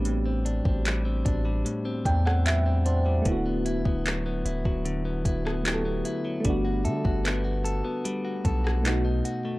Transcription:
<<
  \new Staff \with { instrumentName = "Celesta" } { \time 4/4 \key d \mixolydian \tempo 4 = 75 r1 | r1 | r8 e''4. r2 | }
  \new Staff \with { instrumentName = "FM electric piano" } { \time 4/4 \key d \mixolydian << { r2 r8 g''16 fis''16 e''8 c''8 | r1 | r1 | } \\ { <b c' d' g'>2.~ <b c' d' g'>8 r8 | <a b e' fis'>2. <a b e' g' a'>4 | <a b d' fis'>2. <a b dis' fis'>4 | } >> }
  \new Staff \with { instrumentName = "Clean electric guitar" } { \time 4/4 \key d \mixolydian <a, g>16 c'16 d'16 c'16 g16 c'16 d'16 g16 a,16 c'16 d'16 c'16 g16 c'16 d'16 g16 | d16 b16 e'16 b16 fis16 b16 e'16 fis16 d16 b16 e'16 b16 fis16 b16 e'16 fis16 | g16 fis'16 a'16 fis'16 b16 fis'16 a'16 b16 g16 fis'16 a'16 fis'16 b,16 dis'16 fis'16 a16 | }
  \new Staff \with { instrumentName = "808-style bass" } { \clef bass \time 4/4 \key d \mixolydian a,,8. a,,8. a,,8 r8 e,4. | d,,8. d,,8. d,,16 d,,8. d,,4 r8 | g,,8 d16 g,,4 r8. b,,4 r8 | }
  \new DrumStaff \with { instrumentName = "Drums" } \drummode { \time 4/4 hh8 hh16 bd16 <hc hh>8 <hh bd>8 hh8 <hh bd>16 ss16 <hc hh>8 hh8 | <hh bd>8 hh16 bd16 <hc hh>8 hh16 bd16 hh8 <hh bd>16 ss16 <hc hh>8 hh8 | <hh bd>8 hh16 bd16 <hc hh>8 hh8 hh8 <hh bd>16 ss16 <hc hh>8 hh8 | }
>>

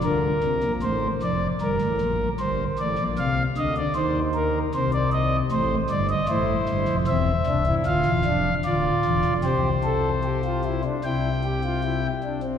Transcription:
<<
  \new Staff \with { instrumentName = "Pipe organ" } { \time 4/4 \key bes \major \tempo 4 = 76 << { bes'4 c''8 d''8 bes'4 c''8 d''8 | f''8 ees''16 d''16 c''8 bes'8 c''16 d''16 ees''8 c''8 d''16 ees''16 | \key c \mixolydian c''4 e''4 f''4 d''4 | c''2 g''4. r8 | } \\ { r1 | r1 | e'4 c'8 d'16 e'16 f'8 d'8 f'4 | g'8 a'8 g'16 f'16 e'16 d'16 e'8 g'16 f'16 e'8 d'16 c'16 | } >> }
  \new Staff \with { instrumentName = "Pipe organ" } { \clef bass \time 4/4 \key bes \major <d, d>8 <c, c>16 <bes,, bes,>16 <a,, a,>8 <f,, f,>8 <g,, g,>16 <a,, a,>16 <bes,, bes,>8 <g,, g,>8 <a,, a,>16 <bes,, bes,>16 | <c, c>8 <d, d>8 <ees, ees>4 <c, c>4 <a,, a,>8 <g,, g,>8 | \key c \mixolydian <a,, a,>8 <g,, g,>16 <f,, f,>16 <e,, e,>8 <c,, c,>8 <d,, d,>16 <e,, e,>16 <f,, f,>8 <d,, d,>8 <e,, e,>16 <f,, f,>16 | <c, c>2 <c, c>4. r8 | }
>>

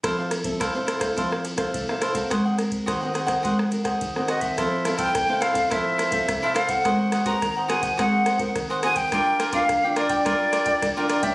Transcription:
<<
  \new Staff \with { instrumentName = "Flute" } { \time 4/4 \key f \major \tempo 4 = 106 r1 | r2. r8 ees''16 e''16~ | e''8. g''8. f''8 e''4. f''16 ges''16~ | ges''8. bes''8. aes''8 ges''4 r8 aes''16 g''16~ |
g''8. f''8. d''2 d''16 e''16 | }
  \new Staff \with { instrumentName = "Cavaquinho" } { \time 4/4 \key f \major <e' a' c'' f''>16 <a' c'' f''>16 r8 <e' a' c'' f''>16 <a' c'' f''>16 <e' a' c'' f''>16 <a' c'' f''>16 <e' a' c'' f''>16 <a' c'' f''>16 r16 <a' c'' f''>8 <a' c'' f''>16 <e' a' c'' f''>16 <a' c'' f''>16 | <ges' aes' c'' ges''>16 <aes' c'' ges''>16 r8 <ges' aes' c'' ges''>16 <aes' c'' ges''>16 <ges' aes' c'' ges''>16 <aes' c'' ges''>16 <ges' aes' c'' ges''>16 <aes' c'' ges''>16 r16 <aes' c'' ges''>8 <aes' c'' ges''>16 <ges' aes' c'' ges''>16 <aes' c'' ges''>16 | <e' a' c'' f''>8 <e' a' c'' f''>16 <e' a' c'' f''>16 r16 <a' c'' f''>16 <e' a' c'' f''>16 <a' c'' f''>16 <e' a' c'' f''>8 <e' a' c'' f''>16 <a' c'' f''>8 <e' a' c'' f''>16 <e' a' c'' f''>16 <a' c'' f''>16 | <ges' aes' c'' ges''>8 <ges' aes' c'' ges''>16 <ges' aes' c'' ges''>16 r16 <aes' c'' ges''>16 <ges' aes' c'' ges''>16 <aes' c'' ges''>16 <ges' aes' c'' ges''>8 <ges' aes' c'' ges''>16 <aes' c'' ges''>8 <ges' aes' c'' ges''>16 <ges' aes' c'' ges''>16 <aes' c'' ges''>16 |
<f' bes' d'' g''>8 <f' bes' d'' g''>16 <f' bes' d'' g''>16 r16 <bes' d'' g''>16 <f' bes' d'' g''>16 <bes' d'' g''>16 <f' bes' d'' g''>8 <f' bes' d'' g''>16 <bes' d'' g''>8 <f' bes' d'' g''>16 <f' bes' d'' g''>16 <bes' d'' g''>16 | }
  \new Staff \with { instrumentName = "Nylon-string guitar" } { \time 4/4 \key f \major << { <c' e' a'>8. <c' e' a'>8 <c' e' a'>8 <c' e' a'>16 <c' e' a'>8. <c' e' a'>8 <c' e' a'>8 <c' ges' bes'>16~ | <c' ges' bes'>8 <c' ges' bes'>8. <c' ges' bes'>8 <c' ges' bes'>16 <c' ges' bes'>16 r16 <c' ges' bes'>8 r16 <c' ges' bes'>8. | <c' e' a'>8 <c' e' a'>8. <c' e' a'>8 <c' e' a'>16 <c' e' a'>8. <c' e' a'>8. <c' e' a'>16 r16 | <c' ges' bes'>8 r16 <c' ges' bes'>8. <c' ges' bes'>16 r16 <c' ges' bes'>8. <c' ges' bes'>8. <c' ges' bes'>8 |
<d' f' bes'>8. <d' f' bes'>8 <d' f' bes'>8. <d' f' bes'>8. <d' f' bes'>8 <d' f' bes'>8 <g des' e'>16 | } \\ { f4 c4 f4 c4 | aes4 ees4 aes4 ees4 | f4 c4 f4 c4 | aes4 ees4 aes4 ees4 |
g4 d4 g4 d4 | } >> }
  \new DrumStaff \with { instrumentName = "Drums" } \drummode { \time 4/4 <bd cymr ss>8 <cymr ss>16 <bd cymr>16 <bd cymr ss>8 <cymr ss>16 <bd cymr ss>16 <bd cymr>16 ss16 cymr16 <bd cymr ss>16 <bd cymr>16 ss16 <cymr ss>16 <bd cymr>16 | <bd cymr ss>8 <cymr ss>16 <bd cymr>16 <bd cymr ss>8 <cymr ss>16 <bd cymr ss>16 <bd cymr>16 ss16 cymr16 <bd cymr ss>16 <bd cymr>16 ss16 <cymr ss>16 <bd cymr>16 | <bd cymr ss>8 <cymr ss>16 <bd cymr>16 <bd cymr ss>8 <cymr ss>16 <bd cymr>16 <bd cymr ss>8 <cymr ss>16 <bd cymr>16 <bd cymr ss>8 <cymr ss>16 <bd cymr>16 | <bd cymr ss>8 <cymr ss>16 <bd cymr>16 <bd cymr ss>8 <cymr ss>16 <bd cymr>16 <bd cymr ss>8 <cymr ss>16 <bd cymr>16 <bd cymr ss>8 <cymr ss>16 <bd cymr>16 |
<bd cymr ss>8 <cymr ss>16 <bd cymr>16 <bd cymr ss>8 <cymr ss>16 <bd cymr>16 <bd cymr ss>8 <cymr ss>16 <bd cymr>16 <bd cymr ss>8 <cymr ss>16 <bd cymr>16 | }
>>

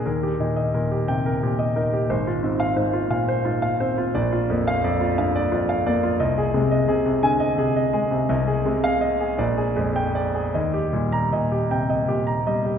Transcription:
<<
  \new Staff \with { instrumentName = "Grand piano" } { \time 6/8 \key ees \major \tempo 4. = 58 << { r4. g''8 r4 | r8. f''8 r4. r16 | r8. f''8 r4. r16 | r4. aes''8 r4 |
r8. f''8 r4 g''8 r16 | r8. bes''8 r4. r16 | } \\ { bes'16 g'16 bes,16 ees''16 bes'16 g'8 bes'16 g'16 ees''16 bes'16 g'16 | c''16 f'16 aes,8 c''16 f'16 f''16 c''16 f'16 f''16 c''16 f'16 | d''16 f'16 f,8 d''16 f'16 f''16 d''16 f'16 f''16 d''16 f'16 | ees''16 aes'16 c16 ees''16 aes'16 c8 ees''16 aes'16 ees''16 aes'16 c16 |
ees''16 aes'16 c8 ees''16 aes'16 d''16 aes'16 f,8 d''16 aes'16 | ees''16 g'16 bes,8 ees''16 g'16 g''16 ees''16 g'16 bes''16 ees''16 g'16 | } >> }
  \new Staff \with { instrumentName = "Grand piano" } { \clef bass \time 6/8 \key ees \major ees,8 ees'8 bes,8 c8 bes,8 ees'8 | aes,,8 c'8 aes,8 bes,8 aes,8 c'8 | bes,,8 bes8 f,8 g,8 f,8 bes8 | c,8 aes8 c8 d8 c8 aes8 |
c,8 aes4 bes,,8 aes4 | ees,8 g8 bes,8 c8 bes,8 g8 | }
>>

